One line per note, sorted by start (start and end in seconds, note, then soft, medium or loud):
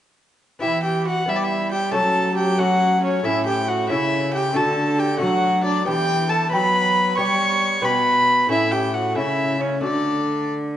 0.59 1.25 E3 soft
0.59 1.25 B3 soft
0.59 1.26 E4 soft
0.59 0.83 E4 medium
0.59 1.26 G4 soft
0.59 0.82 E5 medium
0.63 1.25 E3 medium
0.83 1.07 G4 medium
0.83 1.06 G5 medium
1.05 1.27 F#4 medium
1.05 1.30 F#5 medium
1.26 1.96 G3 medium
1.26 1.91 G3 soft
1.26 1.91 B3 soft
1.26 1.92 E4 soft
1.26 1.73 E4 medium
1.26 1.92 G4 soft
1.26 1.37 E5 medium
1.36 1.45 D5 medium
1.44 1.71 E5 medium
1.72 1.96 G4 medium
1.72 1.93 G5 medium
1.91 3.25 F#3 medium
1.91 3.22 F#3 soft
1.91 2.56 A3 soft
1.91 2.57 C#4 soft
1.91 2.58 F#4 soft
1.91 2.35 A4 medium
1.91 2.37 A5 medium
2.35 2.61 G4 medium
2.35 2.60 G5 medium
2.57 3.22 A3 soft
2.57 3.23 C#4 soft
2.57 3.00 F#4 medium
2.57 3.23 F#4 soft
2.57 3.03 F#5 medium
3.01 3.24 C#4 medium
3.01 3.26 C#5 medium
3.23 3.92 A2 medium
3.23 3.87 A3 soft
3.23 3.88 C#4 soft
3.23 3.46 E4 medium
3.23 3.89 E4 soft
3.23 3.46 E5 medium
3.27 3.88 A2 medium
3.46 3.68 G4 medium
3.46 3.69 G5 medium
3.68 3.93 F#4 medium
3.68 3.89 F#5 medium
3.88 4.56 C#3 medium
3.88 4.53 C#3 medium
3.88 4.52 A3 soft
3.88 4.54 C#4 soft
3.88 4.55 E4 soft
3.88 4.34 E4 medium
3.88 4.33 E5 medium
4.34 4.55 G4 medium
4.34 4.58 G5 medium
4.53 5.23 D3 medium
4.53 5.17 A3 soft
4.53 5.18 D4 soft
4.53 5.20 F#4 soft
4.53 5.00 A4 medium
4.53 5.01 A5 medium
4.57 5.19 D3 medium
4.99 5.21 G4 medium
4.99 5.19 G5 medium
5.18 5.84 F#3 medium
5.18 5.84 A3 soft
5.18 5.84 D4 soft
5.18 5.85 F#4 soft
5.18 5.65 F#4 medium
5.18 5.63 F#5 medium
5.22 5.87 F#3 medium
5.64 5.85 D4 medium
5.64 5.86 D5 medium
5.85 6.49 E3 medium
5.85 6.54 E3 medium
5.85 6.50 B3 soft
5.85 6.29 G4 medium
5.85 6.51 G4 soft
5.85 6.31 G5 loud
6.30 6.50 A4 medium
6.30 6.51 A5 medium
6.51 7.18 F#3 medium
6.51 7.15 F#3 medium
6.51 7.16 B3 soft
6.51 7.18 B4 medium
6.51 7.17 G5 soft
6.51 7.17 B5 medium
7.17 7.83 G3 medium
7.17 7.82 G3 medium
7.17 7.81 B3 soft
7.17 7.82 G4 soft
7.17 7.84 C#5 medium
7.17 7.86 C#6 loud
7.82 8.49 B2 medium
7.82 8.47 B2 soft
7.82 8.47 B3 soft
7.82 8.48 G4 soft
7.82 8.49 B4 medium
7.82 8.51 B5 medium
8.49 9.18 A2 medium
8.49 9.14 A2 soft
8.49 9.13 A3 soft
8.49 9.14 C#4 soft
8.49 8.73 E4 medium
8.49 9.15 E4 soft
8.49 8.73 E5 medium
8.71 8.94 G4 medium
8.71 8.95 G5 medium
8.94 9.18 F#4 medium
8.94 9.17 F#5 medium
9.14 9.84 C#3 medium
9.14 9.81 C#3 soft
9.14 9.79 A3 soft
9.14 9.81 C#4 soft
9.14 9.60 E4 medium
9.14 9.82 E4 soft
9.14 9.62 E5 medium
9.61 9.83 C#4 medium
9.61 9.83 C#5 medium
9.80 10.77 A3 soft
9.80 10.77 D4 soft
9.80 10.50 D4 medium
9.80 10.77 F#4 soft
9.80 10.49 D5 medium
9.84 10.77 D3 soft
9.84 10.77 D3 medium